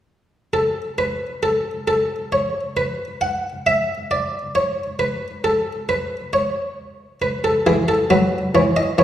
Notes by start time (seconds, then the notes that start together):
0.53 A4
0.98 B4
1.43 A4
1.88 A4
2.32 C#5
2.77 B4
3.21 F#5
3.67 E5
4.11 D5
4.55 C#5
4.99 B4
5.44 A4
5.89 B4
6.33 C#5
7.22 B4
7.44 A4
7.67 E3 G#4
7.88 A4
8.10 F#3 B4
8.55 E3 C#5
8.76 D#5
8.98 E3 C#5